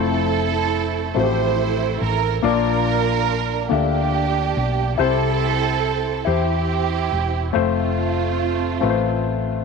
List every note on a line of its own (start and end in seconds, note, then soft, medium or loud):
0.00 1.12 F1 loud
0.00 1.03 F3 medium
0.00 1.02 A3 medium
0.00 1.03 C4 medium
0.00 1.13 C4 medium
0.00 1.03 E4 medium
0.00 1.13 E4 medium
0.00 1.16 A4 loud
0.00 1.03 C5 medium
1.14 1.97 A1 medium
1.14 2.30 F3 medium
1.14 2.29 A3 medium
1.14 2.29 C4 medium
1.14 2.30 E4 medium
1.14 2.41 E4 medium
1.14 1.23 F#4 medium
1.14 2.01 C5 loud
1.19 2.41 A4 medium
1.23 2.34 G4 medium
2.01 2.40 A1 medium
2.01 2.41 A#4 loud
2.42 3.67 A#1 loud
2.42 3.67 A#2 medium
2.42 3.57 A#3 medium
2.42 3.58 D4 medium
2.42 3.68 D4 medium
2.42 3.58 F4 medium
2.42 3.68 F4 medium
2.42 3.67 A#4 loud
2.42 3.58 D5 medium
2.42 3.58 A5 medium
3.69 4.52 D2 medium
3.69 4.84 A#3 medium
3.69 4.85 D4 medium
3.69 4.95 D4 medium
3.69 4.85 F4 medium
3.69 4.94 G4 loud
3.69 4.85 A4 medium
3.69 4.85 E5 medium
4.57 4.96 B1 medium
4.98 6.23 C2 loud
4.98 6.23 C3 medium
4.98 6.23 C4 medium
4.98 6.12 E4 medium
4.98 6.23 E4 medium
4.98 6.13 G4 medium
4.98 6.26 A4 loud
4.98 6.13 C5 medium
6.25 7.08 E2 medium
6.25 7.40 E4 medium
6.25 7.41 G4 medium
6.25 7.54 G4 loud
6.25 7.41 C5 medium
6.29 7.52 C4 medium
6.29 7.52 E4 medium
7.12 7.51 E1 medium
7.53 8.79 F1 loud
7.53 8.68 A3 medium
7.53 9.64 A3 medium
7.53 8.68 C4 medium
7.53 9.64 C4 medium
7.53 9.65 F4 medium
7.53 8.69 F4 medium
7.53 8.69 C5 medium
7.53 8.68 E5 medium
8.81 9.64 A1 medium
8.81 9.65 A3 medium
8.81 9.65 C4 medium
8.81 9.65 F4 medium
8.81 8.89 B4 medium
8.81 9.65 E5 medium
8.90 9.65 C5 medium